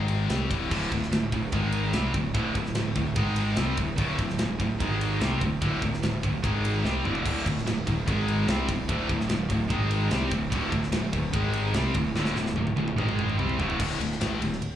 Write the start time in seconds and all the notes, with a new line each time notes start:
Already playing: G#1 G#2 D#3 G#3
0.08 ride
0.29 C2 C3 G3 C4, snare, ride
0.51 D1 D2 A2 D3, kick, ride
0.71 D1 D2 A2 D3, kick, crash
0.92 D1 D2 A2, kick, ride
1.03 snare
1.11 D1 D2 A2, snare, ride
1.32 D1 D2 A2, kick, ride
1.52 G#1 G#2 D#3 G#3, kick, ride
1.72 ride
1.93 C2 C3 G3 C4, snare, ride
2.14 D1 D2 A2, kick, ride
2.34 D1 D2 A2 D3, kick, ride
2.55 D1 D2 A2, kick, ride
2.66 snare
2.75 D1 D2 A2, snare, ride
2.95 D1 D2 A2, kick, ride
3.16 G#1 G#2 D#3 G#3, kick, ride
3.36 ride
3.56 C2 C3 G3 C4, snare, ride
3.77 D1 D2 A2, kick, ride
3.98 D1 D2 A2 D3, kick, ride
4.18 D1 D2 A2, kick, ride
4.30 snare
4.39 D1 D2 A2, snare, ride
4.60 D1 D2 A2, kick, ride
4.80 G#1 G#2 D#3 G#3, kick, ride
5.01 ride
5.21 C2 C3 G3 C4, snare, ride
5.41 D1 D2 A2, kick, ride
5.62 D1 D2 A2 D3, kick, ride
5.82 D1 D2 A2, kick, ride
5.94 snare
6.03 D1 D2 A2, snare, ride
6.23 D1 D2 A2, kick, ride
6.43 G#1 G#2 D#3 G#3, kick, ride
6.65 ride
6.84 C2 C3 G3 C4, snare
7.05 D1 D2 A2 D3, mid tom
7.15 floor tom
7.25 D1 D2 A2 D3, kick, crash
7.46 D1 D2 A2, kick, ride
7.58 snare
7.66 D1 D2 A2, snare, ride
7.87 D1 D2 A2, kick, ride
8.07 G#1 G#2 D#3 G#3, kick, ride
8.28 ride
8.48 C2 C3 G3 C4, snare, ride
8.69 D1 D2 A2, kick, ride
8.89 D1 D2 A2 D3, kick, ride
9.09 D1 D2 A2, kick, ride
9.21 snare
9.28 D1 D2 A2, snare, ride
9.50 D1 D2 A2, kick, ride
9.70 G#1 G#2 D#3 G#3, kick, ride
9.91 ride
10.11 C2 C3 G3 C4, snare, ride
10.31 D1 D2 A2, kick, ride
10.52 D1 D2 A2 D3, kick, ride
10.72 D1 D2 A2, kick, ride
10.83 snare
10.92 D1 D2 A2, snare, ride
11.13 D1 D2 A2, kick, ride
11.33 G#1 G#2 D#3 G#3, kick, ride
11.53 ride
11.73 C2 C3 G3 C4, snare, ride
11.94 D1 D2 A2, kick, ride
12.15 D1 D2 A2 D3, snare
12.25 snare
12.36 D1 D2 A2, snare
12.46 snare
12.55 D1 D2 A2, high tom
12.67 high tom
12.77 D1 D2 A2, high tom
12.88 mid tom
12.97 G#1 G#2 D#3 G#3, mid tom
13.09 mid tom
13.19 mid tom
13.30 mid tom
13.38 C2 C3 G3 C4, mid tom
13.49 floor tom
13.59 D1 D2 A2 D3, floor tom
13.70 floor tom
13.80 D1 D2 A2 D3, kick, crash
14.00 D1 D2 A2, ride
14.12 snare
14.21 A1 A2 E3 A3, snare, ride
14.41 D1 D2 A2, ride
14.52 snare
14.62 ride